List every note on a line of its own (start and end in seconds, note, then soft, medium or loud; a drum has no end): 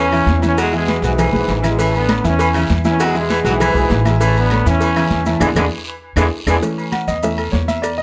0.00 0.24 E2 loud
0.00 0.39 E3 medium
0.00 0.39 C#4 loud
0.11 0.36 C#3 medium
0.11 0.37 E3 loud
0.11 0.37 E4 loud
0.11 0.37 E5 medium
0.11 high conga soft
0.11 low agogo loud
0.11 claves medium
0.11 maracas soft
0.27 0.97 E2 loud
0.27 cowbell medium
0.27 high conga medium
0.27 short guiro medium
0.27 maracas soft
0.42 0.67 E3 medium
0.42 0.57 E3 medium
0.42 0.58 C#4 loud
0.42 0.67 E4 medium
0.42 0.68 E5 loud
0.42 high conga medium
0.42 low agogo medium
0.42 short guiro medium
0.42 maracas medium
0.58 0.73 B2 medium
0.58 0.74 F#3 loud
0.58 0.74 G#3 loud
0.58 cowbell loud
0.58 high conga soft
0.58 low agogo loud
0.58 long guiro medium
0.58 claves medium
0.58 maracas medium
0.72 1.01 B2 medium
0.72 0.97 E3 medium
0.72 1.02 G#3 loud
0.72 0.97 E4 medium
0.72 0.98 E5 medium
0.72 high conga soft
0.72 maracas soft
0.88 0.96 E3 medium
0.88 cowbell medium
0.88 high conga loud
0.88 low agogo medium
0.88 short guiro medium
0.88 maracas soft
1.02 1.31 B1 loud
1.02 1.32 G#2 medium
1.02 1.32 E3 medium
1.02 1.12 F#3 medium
1.02 1.28 G#3 medium
1.02 1.28 G#4 medium
1.02 1.28 B4 medium
1.02 high conga soft
1.02 short guiro medium
1.02 maracas medium
1.18 1.53 E3 loud
1.18 cowbell loud
1.18 high conga soft
1.18 low conga medium
1.18 low agogo loud
1.18 long guiro medium
1.18 claves medium
1.18 maracas medium
1.33 1.47 B1 medium
1.33 1.62 G#2 medium
1.33 1.63 E3 medium
1.33 1.58 G#3 medium
1.33 1.58 G#4 medium
1.33 1.58 B4 medium
1.33 high conga loud
1.33 maracas soft
1.48 2.19 A1 loud
1.48 cowbell medium
1.48 low timbale medium
1.48 low agogo medium
1.48 short guiro medium
1.48 maracas soft
1.62 1.80 B2 medium
1.62 1.76 E3 medium
1.62 1.75 E4 medium
1.62 1.76 E5 medium
1.62 cowbell medium
1.62 low conga medium
1.62 low agogo loud
1.62 short guiro medium
1.62 claves medium
1.62 maracas medium
1.68 1.81 G#3 medium
1.78 1.94 C#3 medium
1.78 2.03 E3 medium
1.78 2.14 E3 loud
1.78 1.95 A3 medium
1.78 2.03 E4 medium
1.78 2.03 E5 medium
1.78 cowbell loud
1.78 high conga soft
1.78 low agogo medium
1.78 long guiro medium
1.78 maracas medium
1.94 2.23 D3 medium
1.94 2.24 B3 loud
1.94 high conga soft
1.94 low agogo medium
1.94 maracas soft
2.09 2.21 A3 medium
2.09 2.21 A4 medium
2.09 2.22 C#5 medium
2.09 cowbell medium
2.09 high conga loud
2.09 low agogo loud
2.09 short guiro medium
2.09 claves medium
2.09 maracas soft
2.24 2.67 E2 loud
2.24 2.49 E3 loud
2.24 2.59 E3 medium
2.24 2.59 C#4 loud
2.24 2.49 E4 medium
2.24 2.49 E5 medium
2.24 high conga soft
2.24 short guiro medium
2.24 maracas medium
2.39 2.48 E3 loud
2.39 cowbell loud
2.39 high conga soft
2.39 low agogo medium
2.39 long guiro medium
2.39 maracas medium
2.53 2.78 C#3 medium
2.53 2.80 E3 loud
2.53 2.80 E4 loud
2.53 2.80 E5 medium
2.53 high conga soft
2.53 low agogo loud
2.53 claves medium
2.53 maracas soft
2.70 3.40 E2 loud
2.70 cowbell medium
2.70 high conga medium
2.70 low timbale medium
2.70 short guiro medium
2.70 maracas soft
2.85 3.10 E3 medium
2.85 3.00 E3 medium
2.85 3.10 E4 medium
2.85 3.10 E5 medium
2.85 high conga medium
2.85 low agogo medium
2.85 short guiro medium
2.85 maracas medium
2.89 3.01 C#4 loud
3.00 3.16 B2 medium
3.00 3.16 F#3 medium
3.00 3.17 G#3 loud
3.00 cowbell loud
3.00 high conga soft
3.00 low agogo loud
3.00 long guiro medium
3.00 claves medium
3.00 maracas loud
3.15 3.44 B2 medium
3.15 3.40 E3 loud
3.15 3.45 G#3 loud
3.15 3.40 E4 medium
3.15 3.40 E5 medium
3.15 high conga soft
3.15 maracas soft
3.30 3.38 E3 medium
3.30 cowbell medium
3.30 high conga loud
3.30 low agogo medium
3.30 short guiro medium
3.30 maracas soft
3.44 3.73 B1 loud
3.44 3.74 G#2 medium
3.44 3.75 E3 medium
3.44 3.53 F#3 medium
3.44 3.69 G#3 medium
3.44 3.70 G#4 medium
3.44 3.70 B4 medium
3.44 high conga soft
3.44 short guiro medium
3.44 maracas medium
3.60 3.94 E3 loud
3.60 cowbell loud
3.60 high conga soft
3.60 low conga medium
3.60 low agogo loud
3.60 long guiro medium
3.60 claves medium
3.60 maracas medium
3.74 3.89 B1 medium
3.74 4.04 G#2 medium
3.74 4.05 E3 loud
3.74 4.00 G#3 medium
3.74 4.00 G#4 medium
3.74 4.00 B4 medium
3.74 high conga soft
3.74 maracas soft
3.90 4.60 A1 loud
3.90 cowbell medium
3.90 high conga medium
3.90 low timbale medium
3.90 low agogo medium
3.90 short guiro medium
3.90 maracas soft
4.05 4.13 B2 medium
4.05 4.18 E3 loud
4.05 4.14 G#3 medium
4.05 4.18 E4 loud
4.05 4.18 E5 loud
4.05 cowbell medium
4.05 high conga medium
4.05 low agogo loud
4.05 short guiro medium
4.05 claves medium
4.05 maracas medium
4.20 4.35 C#3 medium
4.20 4.45 E3 medium
4.20 4.55 E3 medium
4.20 4.36 A3 loud
4.20 4.46 E4 medium
4.20 4.46 E5 medium
4.20 cowbell loud
4.20 high conga soft
4.20 low agogo medium
4.20 long guiro medium
4.20 maracas loud
4.36 4.67 D3 medium
4.36 4.67 B3 loud
4.36 high conga soft
4.36 low agogo medium
4.36 maracas soft
4.50 4.64 A3 medium
4.50 4.64 A4 medium
4.50 4.64 C#5 medium
4.50 cowbell medium
4.50 high conga loud
4.50 low agogo loud
4.50 short guiro medium
4.50 claves medium
4.50 maracas soft
4.66 5.08 E2 loud
4.66 5.23 E3 medium
4.66 4.91 E3 medium
4.66 5.23 C#4 loud
4.66 4.91 E4 medium
4.66 4.92 E5 loud
4.66 high conga soft
4.66 short guiro medium
4.66 maracas medium
4.81 4.90 E3 loud
4.81 cowbell loud
4.81 high conga soft
4.81 low agogo medium
4.81 long guiro medium
4.81 maracas medium
4.96 5.20 C#3 medium
4.96 5.21 E3 loud
4.96 5.21 E4 loud
4.96 5.21 E5 loud
4.96 high conga soft
4.96 low agogo loud
4.96 claves medium
4.96 maracas soft
5.11 5.39 E2 loud
5.11 cowbell medium
5.11 high conga medium
5.11 short guiro medium
5.11 maracas soft
5.26 5.41 C#3 medium
5.26 5.39 E3 medium
5.26 5.41 A3 medium
5.26 5.38 E4 medium
5.26 5.39 E5 medium
5.26 high conga medium
5.26 low agogo medium
5.26 short guiro medium
5.26 maracas medium
5.40 5.52 E2 loud
5.40 5.48 D3 loud
5.40 5.48 E3 loud
5.40 5.49 E3 loud
5.40 5.49 G#3 loud
5.40 5.51 D4 loud
5.40 5.50 E4 medium
5.40 5.50 G#4 loud
5.40 cowbell loud
5.40 high conga loud
5.40 high timbale loud
5.40 long guiro loud
5.40 claves medium
5.40 maracas loud
5.55 5.67 E2 loud
5.55 5.64 D3 medium
5.55 5.64 E3 medium
5.55 5.64 G#3 loud
5.55 5.66 D4 loud
5.55 5.66 E4 loud
5.55 5.66 G#4 loud
5.55 cowbell loud
5.55 high conga loud
5.55 high timbale loud
5.55 long guiro loud
5.55 claves loud
5.55 maracas loud
6.16 6.28 E2 loud
6.16 6.25 D3 loud
6.16 6.24 E3 loud
6.16 6.25 E3 loud
6.16 6.24 G#3 loud
6.16 6.26 D4 loud
6.16 6.27 E4 loud
6.16 6.26 G#4 loud
6.16 cowbell loud
6.16 high conga loud
6.16 high timbale loud
6.16 long guiro loud
6.16 claves loud
6.16 maracas loud
6.47 6.58 E2 loud
6.47 6.56 D3 loud
6.47 6.54 E3 loud
6.47 6.55 E3 loud
6.47 6.55 G#3 loud
6.47 6.57 D4 loud
6.47 6.57 E4 medium
6.47 6.57 G#4 loud
6.47 cowbell loud
6.47 high conga loud
6.47 high timbale loud
6.47 claves loud
6.47 maracas loud
6.61 7.05 E3 medium
6.61 7.06 A3 soft
6.61 7.05 C#4 medium
6.61 cowbell loud
6.61 high conga soft
6.61 low agogo medium
6.61 long guiro medium
6.61 maracas medium
6.77 high conga soft
6.77 low agogo medium
6.77 maracas soft
6.92 7.07 F#5 medium
6.92 cowbell medium
6.92 high conga loud
6.92 low agogo loud
6.92 short guiro medium
6.92 claves medium
6.92 maracas soft
7.08 7.50 E2 loud
7.08 7.23 D#5 medium
7.08 short guiro medium
7.08 maracas medium
7.23 7.37 E3 medium
7.23 7.37 A3 soft
7.23 7.37 C#4 medium
7.23 7.38 E5 medium
7.23 cowbell loud
7.23 high conga soft
7.23 low agogo medium
7.23 long guiro medium
7.23 maracas medium
7.38 7.53 A4 medium
7.38 high conga soft
7.38 low agogo loud
7.38 claves medium
7.38 maracas soft
7.52 8.03 E2 medium
7.52 7.67 C#5 medium
7.52 cowbell medium
7.52 high conga medium
7.52 low timbale medium
7.52 short guiro medium
7.52 maracas soft
7.68 7.83 E5 medium
7.68 high conga medium
7.68 low agogo medium
7.68 short guiro medium
7.68 maracas medium
7.82 7.97 D5 medium
7.82 cowbell loud
7.82 high conga soft
7.82 low agogo loud
7.82 long guiro medium
7.82 claves medium
7.82 maracas medium
7.98 8.03 D#5 medium
7.98 high conga soft
7.98 maracas soft